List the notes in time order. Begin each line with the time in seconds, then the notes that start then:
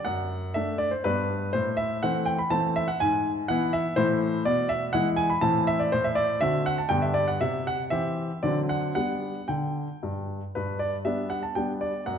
0.05 F#2 F#5
0.54 A3 D4 E5
0.78 D5
0.91 C5
1.04 G2 G3 B3 D4 B4
1.53 A2 C5
1.77 E5
2.03 E3 A3 C4 F#5
2.26 G5
2.38 B5
2.50 E3 A3 C4 A5
2.76 E5
2.88 F#5
3.00 G#2 G#5
3.48 E3 B3 E4 F#5
3.73 E5
3.96 A2 E3 A3 E4 C5
4.45 B2 D5
4.69 E5
4.93 E3 G#3 E4 F#5
5.17 G#5
5.30 B5
5.41 A2 E3 C4 E4 A5
5.67 E5
5.79 D5
5.92 A2 C5
6.04 E5
6.15 D5
6.41 D3 C4 F#4 E5
6.66 F#5
6.78 A5
6.89 G2 D3 B3 G4 G5
7.02 E5
7.14 D5
7.28 F#5
7.41 C3 E5
7.67 F#5
7.90 E3 C4 G4 E5
8.43 D3 F#3 C4 D4 D5
8.69 F#5
8.95 G3 B3 D4 F#5
9.48 D3 G5
10.03 G2
10.55 G2 B4
10.79 D5
11.05 G3 B3 D4 E5
11.30 F#5
11.43 A5
11.55 G3 B3 D4 G5
11.81 D5
12.06 F#2 F#5